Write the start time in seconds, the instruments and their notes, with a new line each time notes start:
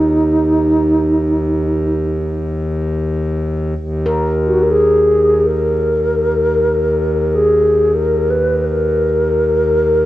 Already playing: harmonium D#2, alto flute D#4
3.76 harmonium D#2
4.06 handpan A#4
4.46 alto flute F#4
4.63 alto flute A#4
4.70 alto flute G#4
5.46 alto flute A#4
7.35 alto flute G#4
7.95 alto flute A#4
8.30 alto flute B4
8.65 alto flute A#4